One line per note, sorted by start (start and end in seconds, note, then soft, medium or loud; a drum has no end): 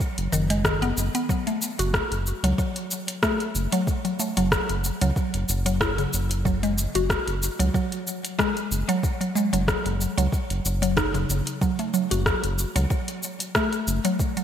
0.00 kick medium
0.00 shaker soft
0.18 0.28 F#1 medium
0.18 closed hi-hat soft
0.18 shaker soft
0.32 0.82 F#1 medium
0.32 0.42 D#3 loud
0.32 shaker medium
0.50 0.63 G#3 medium
0.50 closed hi-hat medium
0.50 shaker soft
0.65 0.80 D#3 medium
0.65 kick loud
0.65 cross-stick loud
0.65 shaker soft
0.82 0.92 F#1 loud
0.82 0.95 B3 loud
0.82 closed hi-hat soft
0.82 shaker soft
0.97 1.09 F#1 medium
0.97 shaker medium
1.15 1.29 B3 medium
1.15 closed hi-hat medium
1.15 shaker soft
1.29 1.45 F#3 medium
1.29 kick loud
1.29 shaker soft
1.47 1.55 A3 medium
1.47 closed hi-hat soft
1.47 shaker soft
1.62 shaker medium
1.79 2.01 F#1 loud
1.79 2.42 F#4 medium
1.79 closed hi-hat medium
1.79 shaker soft
1.94 kick loud
1.94 cross-stick loud
1.94 shaker soft
2.11 2.33 F#1 medium
2.11 closed hi-hat soft
2.11 shaker soft
2.27 shaker medium
2.43 2.54 C#2 loud
2.43 2.57 F#3 loud
2.43 closed hi-hat medium
2.43 shaker soft
2.58 3.21 F#3 medium
2.58 kick loud
2.58 shaker soft
2.76 closed hi-hat soft
2.76 shaker soft
2.91 shaker medium
3.08 closed hi-hat medium
3.08 shaker soft
3.23 3.71 A3 loud
3.23 kick loud
3.23 cross-stick loud
3.23 shaker soft
3.40 closed hi-hat soft
3.40 shaker soft
3.55 3.67 F#1 loud
3.55 shaker medium
3.72 3.86 F#3 loud
3.72 closed hi-hat medium
3.72 shaker soft
3.87 kick loud
3.87 shaker soft
4.05 4.13 F#3 medium
4.05 closed hi-hat soft
4.05 shaker soft
4.19 4.29 A3 medium
4.19 shaker medium
4.37 4.59 F#1 medium
4.37 4.51 F#3 medium
4.37 closed hi-hat medium
4.37 shaker soft
4.52 kick loud
4.52 cross-stick loud
4.52 shaker soft
4.69 4.91 F#1 medium
4.69 closed hi-hat soft
4.69 shaker soft
4.84 shaker medium
5.01 5.12 C#2 loud
5.01 5.10 F#3 loud
5.01 closed hi-hat medium
5.01 shaker soft
5.16 kick loud
5.16 shaker soft
5.34 5.44 F#1 medium
5.34 closed hi-hat soft
5.34 shaker soft
5.49 6.06 F#1 medium
5.49 shaker medium
5.66 5.80 F#3 loud
5.66 closed hi-hat medium
5.66 shaker soft
5.81 5.91 E4 medium
5.81 kick loud
5.81 cross-stick loud
5.81 shaker soft
5.98 6.44 C#3 medium
5.98 closed hi-hat soft
5.98 shaker soft
6.13 6.87 F#1 medium
6.13 shaker medium
6.31 closed hi-hat medium
6.31 shaker soft
6.45 6.61 F#3 medium
6.45 kick loud
6.45 shaker soft
6.63 6.71 G#3 medium
6.63 closed hi-hat soft
6.63 shaker soft
6.78 shaker medium
6.95 7.17 F#1 loud
6.95 7.58 F#4 medium
6.95 closed hi-hat medium
6.95 shaker soft
7.10 kick loud
7.10 cross-stick loud
7.10 shaker soft
7.27 7.49 F#1 medium
7.27 closed hi-hat soft
7.27 shaker soft
7.43 shaker medium
7.59 7.70 C#2 loud
7.59 7.73 F#3 medium
7.59 closed hi-hat medium
7.59 shaker soft
7.74 8.37 F#3 medium
7.74 kick loud
7.74 shaker soft
7.92 closed hi-hat soft
7.92 shaker soft
8.07 shaker medium
8.25 closed hi-hat medium
8.25 shaker soft
8.39 8.87 G#3 loud
8.39 kick loud
8.39 cross-stick loud
8.39 shaker soft
8.57 closed hi-hat soft
8.57 shaker soft
8.71 8.83 F#1 medium
8.71 shaker medium
8.89 9.03 F#3 loud
8.89 closed hi-hat medium
8.89 shaker soft
9.03 kick loud
9.03 shaker soft
9.21 9.29 F#3 medium
9.21 closed hi-hat soft
9.21 shaker soft
9.35 9.45 G#3 medium
9.35 shaker medium
9.53 9.75 F#1 loud
9.53 9.67 F#3 loud
9.53 closed hi-hat soft
9.53 shaker soft
9.68 kick loud
9.68 cross-stick loud
9.68 shaker soft
9.85 10.07 F#1 medium
9.85 closed hi-hat soft
9.85 shaker soft
10.01 shaker medium
10.18 10.28 C#2 loud
10.18 10.26 F#3 loud
10.18 closed hi-hat medium
10.18 shaker soft
10.32 kick loud
10.32 shaker soft
10.50 10.60 F#1 medium
10.50 closed hi-hat soft
10.50 shaker soft
10.65 11.14 F#1 medium
10.65 shaker medium
10.82 10.96 F#3 medium
10.82 closed hi-hat medium
10.82 shaker soft
10.97 11.07 D#4 medium
10.97 kick loud
10.97 cross-stick loud
10.97 shaker soft
11.14 11.25 F#1 loud
11.14 11.60 C#3 medium
11.14 closed hi-hat soft
11.14 shaker soft
11.29 11.41 F#1 loud
11.29 shaker medium
11.47 closed hi-hat medium
11.47 shaker soft
11.61 11.77 F#3 medium
11.61 kick loud
11.61 shaker soft
11.79 11.87 A3 medium
11.79 closed hi-hat soft
11.79 shaker soft
11.94 12.09 F#3 medium
11.94 shaker medium
12.11 12.33 F#1 loud
12.11 12.74 F#4 medium
12.11 closed hi-hat medium
12.11 shaker soft
12.26 kick loud
12.26 cross-stick medium
12.26 shaker soft
12.44 12.65 F#1 loud
12.44 closed hi-hat soft
12.44 shaker soft
12.59 shaker medium
12.76 12.86 C#2 loud
12.76 12.89 F#3 loud
12.76 closed hi-hat medium
12.76 shaker soft
12.90 13.53 F#3 medium
12.90 kick loud
12.90 shaker soft
13.08 closed hi-hat soft
13.08 shaker soft
13.23 shaker medium
13.40 closed hi-hat medium
13.40 shaker soft
13.55 14.03 A3 loud
13.55 kick loud
13.55 cross-stick loud
13.55 shaker soft
13.73 closed hi-hat soft
13.73 shaker soft
13.87 13.99 F#1 loud
13.87 shaker medium
14.05 14.19 F#3 medium
14.05 closed hi-hat medium
14.05 shaker soft
14.19 kick loud
14.19 shaker soft
14.37 14.44 F#3 medium
14.37 closed hi-hat soft
14.37 shaker soft